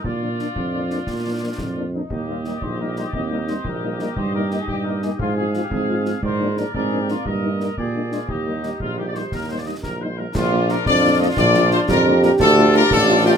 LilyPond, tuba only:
\new Staff \with { instrumentName = "Tuba" } { \clef bass \time 6/8 \key ees \major \tempo 4. = 116 bes,4. f,4. | bes,4. f,4. | ees,4. bes,,4. | ees,4. bes,,4. |
g,4. g,4. | aes,4. aes,4. | aes,4. aes,4. | g,4. bes,4. |
ees,4. bes,,4. | ees,4. bes,,4. | \key bes \major bes,,4. f,4. | bes,,4. f,4. |
d,4. a,,4. | }